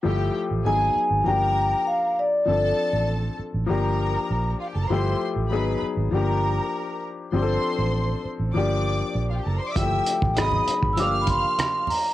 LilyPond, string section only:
\new Staff \with { instrumentName = "String section" } { \time 4/4 \key g \dorian \tempo 4 = 99 <g' g''>8 r8 <aes' aes''>8 r8 <bes' bes''>4. r8 | <a' a''>4. r8 <bes' bes''>4~ <bes' bes''>16. r32 <f' f''>32 <g' g''>32 <a' a''>32 <bes' bes''>32 | <c'' c'''>8 r8 <ces'' ces'''>8 r8 <bes' bes''>4. r8 | <c'' c'''>4. r8 <d'' d'''>4~ <d'' d'''>32 r32 <f' f''>32 <g' g''>32 <a' a''>32 <bes' bes''>32 <c'' c'''>32 <d'' d'''>32 |
<e'' e'''>8 r8 <ees'' ees'''>8 r8 <f'' f'''>4. r8 | }